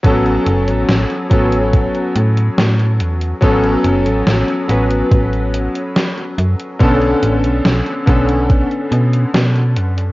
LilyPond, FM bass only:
\new Staff \with { instrumentName = "FM bass" } { \clef bass \time 4/4 \key a \major \tempo 4 = 71 a,,8 fis,,16 a,,16 a,,16 r16 a,,8. r16 a,8 a,8 e,8 | a,,8 fis,,16 a,,16 a,,16 r16 a,,8 a,,8. r8. fis,16 r16 | b,,8 a,,16 b,,16 b,,16 r16 b,,8. r16 b,8 b,8 fis,8 | }